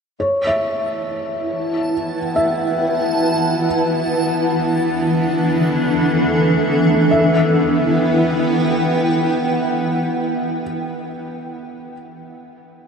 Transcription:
0.20 E3 B3 E4 C#5 A5
0.47 E5
1.06 F#5
1.12 B4
1.75 G5
2.36 E5
3.67 E3
3.95 D4
5.14 A4
5.20 E5
7.11 E3 B3 E4 E5
7.25 B4
7.39 F#5
7.52 G5

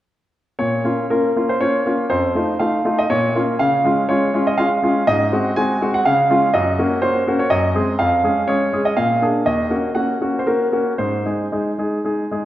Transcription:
0.59 A#2 C#5
0.85 A#3 C#4 F4
1.10 A#3 C#4 F4 A#4
1.36 A#3 C#4 F4
1.49 C5
1.60 A#3 C#4 F4 C#5
1.86 A#3 C#4 F4
2.10 F2 C5
2.35 A3 D#4 F4
2.59 A3 D#4 F4 F5
2.85 A3 D#4 F4
2.98 D#5
3.10 A#2 C#5
3.35 A#3 C#4 F4
3.59 C#3 F5
3.85 G#3 C#4 F4
4.09 G#3 C#4 F4 C#5
4.34 G#3 C#4 F4
4.47 D#5
4.57 G#3 C#4 F4 F5
4.82 G#3 C#4 F4
5.07 G#2 D#5
5.32 G#3 C4 F#4
5.56 G#3 C4 F#4 G#5
5.81 G#3 C4 F#4
5.94 F#5
6.06 C#3 F5
6.30 G#3 C#4 F4
6.54 F#2 D#5
6.79 A#3 C#4 F#4
7.02 A#3 C#4 F#4 C5
7.27 A#3 C#4 F#4
7.39 C#5
7.50 F#2 D#5
7.75 G#3 C4 G#4
7.99 F2 F5
8.23 G#3 C#4 G#4
8.48 G#3 C#4 G#4 C#5
8.72 G#3 C#4 G#4
8.85 D#5
8.97 A#2 F5
9.22 A#3 D4 G#4
9.46 D#2 D#5
9.70 A#3 C#4 F#4
9.95 A#3 C#4 F#4 F#5
10.21 A#3 C#4 F#4
10.39 C5
10.47 A#3 C#4 F#4 A#4
10.72 A#3 C#4 F#4
10.98 G#2 C5
11.26 G#3 D#4 G#4
11.52 G#3 D#4 G#4
11.78 G#3 D#4 G#4
12.04 G#3 D#4 G#4
12.32 G#3 D#4 G#4

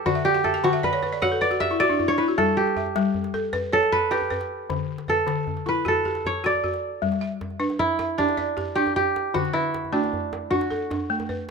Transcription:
Already playing: A4 B4
0.06 D3 F#4 D5, djembe slap, djembe tone, djembe bass
0.15 E5
0.25 G4 D5
0.34 F#5, djembe slap
0.44 A4 E5, djembe bass
0.54 G5, djembe tone
0.64 D3 F#4 F#5, djembe slap
0.73 E5
0.83 B4 D5, djembe bass
0.93 C#5, djembe slap
1.03 B4, djembe slap, djembe tone
1.13 D5
1.22 F#4 C#5 F#5, djembe slap, djembe bass
1.32 A4
1.41 B4 D5, djembe tone
1.51 F#4, djembe slap
1.60 G4 E5, djembe bass
1.71 E4
1.80 F#4 D5, djembe slap
1.89 D4, djembe tone
1.99 E4, djembe bass
2.08 D4 C#5, djembe slap
2.18 E4 B4
2.28 F#4
2.38 G3 A4, djembe slap, djembe tone, djembe bass
2.57 G4
2.67 djembe slap
2.76 E5, djembe bass
2.86 djembe tone
2.96 G3, djembe slap
3.14 djembe bass
3.24 djembe slap
3.34 A4, djembe slap, djembe tone
3.53 B4, djembe slap, djembe bass
3.73 A4 C#5, djembe tone
3.83 djembe slap
3.92 B4, djembe bass
4.11 G4 B4, djembe slap
4.22 djembe tone
4.30 B4, djembe bass
4.41 djembe slap
4.70 D3, djembe slap, djembe tone, djembe bass
4.79 djembe slap
4.98 djembe slap
5.08 A4 B4, djembe slap, djembe bass
5.18 djembe slap, djembe tone
5.27 D3, djembe slap
5.47 djembe slap, djembe bass
5.57 djembe slap
5.66 E4 B4, djembe tone
5.85 F#4 A4, djembe slap, djembe bass
6.05 G4, djembe tone
6.15 djembe slap
6.25 C#5, djembe bass
6.44 F#4 D5, djembe slap
6.54 djembe slap, djembe tone
6.64 F#4, djembe bass
6.74 djembe slap
7.02 G3, djembe slap, djembe tone, djembe bass
7.12 djembe slap
7.21 E5, djembe slap
7.31 djembe slap
7.41 djembe slap, djembe bass
7.50 djembe tone
7.60 D4 B4
7.70 djembe slap
7.79 E4, djembe bass
7.99 E5, djembe slap, djembe tone
8.18 D4 G4, djembe bass
8.29 djembe slap
8.37 D5, djembe tone
8.57 G4, djembe slap, djembe bass
8.75 D4 G4
8.87 djembe slap, djembe tone
8.96 G4, djembe bass
9.16 djembe slap
9.34 D3 F#4, djembe slap, djembe tone, djembe bass
9.45 djembe slap
9.53 E4 B4, djembe slap
9.64 djembe slap
9.74 djembe slap
9.85 djembe tone
9.92 A3 D4 F#4
10.04 djembe slap
10.13 djembe bass
10.33 djembe slap, djembe tone
10.51 D4 F#4, djembe bass
10.61 djembe slap
10.71 A4, djembe tone
10.90 D4, djembe slap, djembe bass
11.10 A3
11.20 djembe slap, djembe tone
11.29 B4, djembe bass
11.39 djembe slap

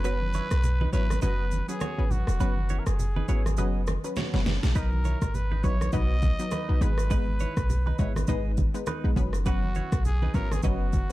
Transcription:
Already playing: F#1 B4
0.04 F#3 B3 C#4 F#4 B4, shaker
0.22 high conga
0.34 E4 C#5, high conga, shaker
0.51 B1, cross-stick, shaker
0.64 low conga, shaker
0.81 D#4 B4, high conga
0.92 G#1 F#3 B3 C#4 E4 B4 C#5, shaker
1.10 cross-stick, high conga, shaker
1.22 F#1 F#3 B3 C#4 F#4 B4 D#5, low conga, shaker
1.51 high conga, shaker
1.68 F#3 B3 C#4 G#4 B4, shaker
1.81 F#4 C#5, cross-stick, high conga, shaker
1.98 G#1 F#3 B3 C#4 B4
2.11 F#4, high conga, low conga, shaker
2.27 E1, cross-stick, shaker
2.40 F#1 F#3 B3 C#4 F#4 B4, shaker
2.57 high conga
2.69 E4 C#5, high conga, shaker
2.79 A#4
2.86 F#1 G#4, cross-stick, shaker
2.99 low conga, shaker
3.16 D#4 B4, high conga
3.28 G#1 F#3 B3 C#4 E4 B4 C#5, shaker
3.46 cross-stick, high conga, shaker
3.57 F#1 F#3 B3 C#4 F#4 B4 D#5, low conga, shaker
3.87 cross-stick, high conga, shaker
4.04 F#3 B3 C#4 B4, shaker
4.16 F#4 C#5, snare, high conga, shaker
4.33 F#1 F#3 B3 C#4 B4, snare
4.46 snare, high conga, low conga, shaker
4.63 A#1, snare, shaker
4.75 B1 F#3 B3 D#4 A#4 B4 D#5, kick, shaker
4.93 high conga
5.04 E4 C#5, high conga, shaker
5.22 G#1, kick, cross-stick, shaker
5.35 B4, low conga, shaker
5.51 D#4 B4, high conga
5.63 A#1 F#3 B3 D#4 E4 B4 C#5, kick, shaker
5.81 cross-stick, high conga, shaker
5.92 B1 F#3 B3 D#4 F#4 B4 D#5, kick, low conga, shaker
6.22 kick, high conga, shaker
6.39 F#3 B3 D#4 B4, shaker
6.51 D#4 B4, cross-stick, high conga, shaker
6.69 B1 F#3 B3 D#4 B4
6.81 G#1 G#3 B3 D#4 B4, high conga, low conga, shaker
6.98 cross-stick, shaker
7.10 G#3 B3 D#4 B4, kick, shaker
7.28 high conga
7.39 E4 C#5, high conga, shaker
7.57 B1, kick, cross-stick, shaker
7.70 low conga, shaker
7.86 D#4 B4, high conga
7.99 G#1 G#3 B3 D#4 E4 B4 C#5, kick, shaker
8.16 cross-stick, high conga, shaker
8.27 G#1 G#3 B3 D#4 G#4 B4 D#5, kick, low conga, shaker
8.57 kick, high conga, shaker
8.74 G#3 B3 D#4 B4, shaker
8.86 D#4 B4, cross-stick, high conga, shaker
9.04 A#1 G#3 B3 D#4 B4
9.16 F#1 F#3 B3 C#4 B4, kick, high conga, low conga, shaker
9.33 cross-stick, shaker
9.46 F#3 B3 C#4 F#4 B4, kick, shaker
9.63 high conga
9.75 E4 C#5, high conga, shaker
9.92 B1, kick, cross-stick, shaker
10.05 G#4, low conga, shaker
10.22 D#4 B4, high conga
10.34 G#1 F#3 B3 C#4 E4 A#4 B4 C#5, kick, shaker
10.52 G#4, cross-stick, high conga, shaker
10.63 F#1 F#3 B3 C#4 F#4 B4 D#5, kick, low conga, shaker
10.93 kick, high conga, shaker

